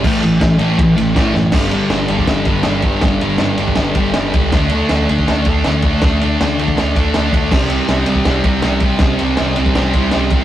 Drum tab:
CC |x---------------|x---------------|----------------|----------------|
RD |--x-x-x-x-x-x---|--x-x-x-x-x-x-x-|x-x-x-x-x-x-x-x-|x-x-x-x-x-x-x-x-|
SD |----o-------o-o-|o---o---o---o---|o---o---o---o---|o---o---o---o---|
BD |o---o---o---o---|o------oo-o---o-|o------oo-o---o-|o------oo-o---o-|

CC |----------------|x---------------|----------------|
RD |x-x-x-x-x-x-x-x-|--x-x-x-x-x-x-x-|x-x-x-x-x-x-x-x-|
SD |o---o---o---o---|o---o---o---o---|o---o---o---o---|
BD |o------oo-o---o-|o------oo-o---o-|o------oo-o---o-|